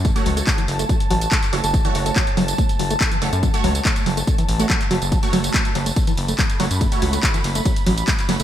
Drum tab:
RD |----------------|----------------|----------------|xxxxxxxxxxxxxxxx|
HH |xxoxxxoxxxoxxxox|xxoxxxoxxxoxxxox|xxoxxxoxxxoxxxox|xxoxxxoxxxoxxxox|
TB |xx-xxx-xxx-xxx-x|xx-xxx-xxx-xxx-x|xx-xxx-xxx-xxx-x|xx-xxx-xxx-xxx-x|
CP |----x-------xx--|----x-------x---|----x-------xx--|----x-------x---|
BD |o---o---o---o---|o---o---o---o---|o---o---o---o---|o---o---o---o---|

RD |xxxxxxxxxxxxxxxx|
HH |xxoxxxoxxxoxxxox|
TB |xx-xxx-xxx-xxx-x|
CP |----x-------xx--|
BD |o---o---o---o---|